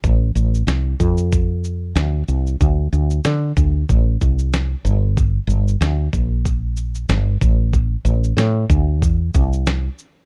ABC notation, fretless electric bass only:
X:1
M:4/4
L:1/8
Q:"Swing 16ths" 1/4=93
K:Dm
V:1 name="Fretless electric bass" clef=bass
A,,, A,,, C,, F,,3 D,, C,, | D,, D,, D, D,, A,,, C,,2 G,,,- | G,,, G,,, D,, B,,,3 G,,, A,,,- | A,,, A,,, A,, D,, E,, C,,2 z |]